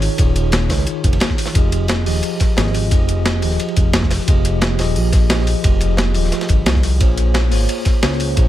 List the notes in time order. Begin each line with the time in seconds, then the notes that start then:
Already playing: D#3 D#4 F4 G#4 C#5
0.02 open hi-hat, ride
0.17 D#1 D#3 D#4 F4 G#4 C#5, kick, closed hi-hat, ride
0.36 closed hi-hat, ride
0.52 snare, closed hi-hat, ride
0.68 C#2 D#3 D#4 F4 G#4 C#5, kick, snare, open hi-hat, ride
0.79 snare
0.86 closed hi-hat, ride
1.04 F1, kick, closed hi-hat, ride
1.13 ride
1.20 snare, closed hi-hat, ride
1.29 kick, snare
1.38 open hi-hat, ride
1.46 snare, ride
1.53 F1 F3 F4 G4 G#4 D#5, kick, closed hi-hat, ride
1.72 closed hi-hat, ride
1.88 snare, closed hi-hat, ride
2.04 D#1 F3 F4 G4 G#4 D#5, open hi-hat
2.23 closed hi-hat, ride
2.40 kick, snare, closed hi-hat, ride
2.56 G#1 F3 F4 G4 G#4 D#5, snare, closed hi-hat, ride
2.66 snare
2.74 open hi-hat, ride
2.90 F1 F3 F4 G4 G#4 D#5, kick, closed hi-hat, ride
3.08 closed hi-hat, ride
3.26 snare, closed hi-hat, ride
3.41 D#1 F3 F4 G4 G#4 D#5, open hi-hat, ride
3.51 snare
3.60 closed hi-hat, ride
3.68 ride
3.77 F1, kick, closed hi-hat, ride
3.94 snare, closed hi-hat, ride
4.03 kick, snare
4.10 snare, open hi-hat, ride
4.20 snare
4.26 F1 F3 F4 G4 G#4 D#5, kick, closed hi-hat, ride
4.45 closed hi-hat, ride
4.61 snare, closed hi-hat, ride
4.77 D#1 F3 F4 G4 G#4 D#5, snare, open hi-hat, ride
4.96 A#1, closed hi-hat, open hi-hat
5.12 kick, snare, closed hi-hat, ride
5.29 F3 F4 G4 G#4 D#5, snare, closed hi-hat, ride
5.39 snare
5.47 open hi-hat, ride
5.62 F1 F3 F4 G4 G#4 D#5, kick, closed hi-hat, ride
5.80 closed hi-hat, ride
5.97 snare, closed hi-hat, ride
6.13 D#1 F3 F4 G4 G#4 D#5, open hi-hat, ride
6.24 snare
6.32 snare, closed hi-hat, ride
6.41 snare, ride
6.49 G1, kick, closed hi-hat, ride
6.66 C2, snare, closed hi-hat, ride
6.75 kick, snare
6.83 snare, open hi-hat, ride
6.99 A#1 A#3 F4 G#4 C5 C#5, kick, closed hi-hat, ride
7.17 closed hi-hat, ride
7.34 snare, closed hi-hat, ride
7.50 G#1 A#3 F4 G#4 C5 C#5, open hi-hat
7.69 closed hi-hat, ride
7.85 kick, snare, closed hi-hat, ride
8.02 C#2 A#3 F4 G#4 C5 C#5, snare, closed hi-hat, ride
8.12 snare
8.20 open hi-hat, ride
8.35 A#1 A#3 F4 G#4 C5 C#5, kick, closed hi-hat, ride